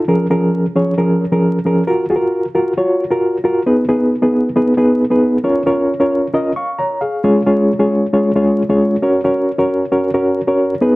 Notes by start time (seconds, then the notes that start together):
0.08 F3 C#4 G#4 A#4
0.30 F3 C#4 G#4 A#4
0.75 F3 C#4 G#4 C#5
0.97 F3 C#4 G#4 A#4
1.32 F3 C#4 G#4 A#4
1.65 F3 C#4 G#4 A#4
1.87 F4 F#4 A#4
2.10 F4 F#4 G#4
2.16 A#4
2.55 F4 F#4 A#4
2.77 F4 F#4 C#5
3.11 F4 F#4 A#4
3.44 F4 F#4 A#4
3.66 B3 D#4 G#4 B4
3.88 B3 D#4 G#4 B4
4.22 B3 D#4 G#4 B4
4.56 B3 D#4 G#4 B4
4.77 B3 D#4 G#4 B4
5.10 B3 D#4 G#4 B4
5.44 C#4 F4 A#4 C#5
5.66 C#4 F4 A#4 C#5
6.00 C#4 F4 A#4 C#5
6.34 C#4 F4 A#4 D#5
6.56 F5 C#6
6.78 C#5 A#5
7.01 G#4 F5
7.24 G#3 C#4 F4 G#4 C#5
7.46 G#3 C#4 F4 G#4 C#5
7.79 G#3 C#4 F4 G#4 C#5
8.13 G#3 C#4 F4 G#4 C#5
8.35 G#3 C#4 F4 G#4 C#5
8.69 G#3 C#4 F4 G#4 C#5
9.02 C#4 F#4 A#4 C#5
9.24 C#4 F#4 A#4 C#5
9.58 C#4 F#4 A#4 C#5
9.92 C#4 F#4 A#4 C#5
10.14 C#4 F#4 A#4 C#5
10.47 C#4 F#4 A#4 C#5
10.81 B3 D#4 G#4 B4